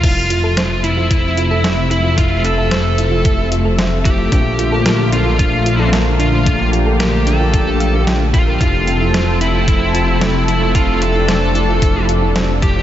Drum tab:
CC |x-------|--------|--------|--------|
HH |xxxxxxxx|xxxxxxxx|xxxxxxxx|xxxxxxxx|
SD |--o---o-|--o---o-|--o---o-|--o---o-|
BD |o---o---|o---o--o|o---o---|o---o--o|

CC |--------|--------|
HH |xxxxxxxx|xxxxxxxx|
SD |--o---o-|--o---o-|
BD |o---o---|o---o--o|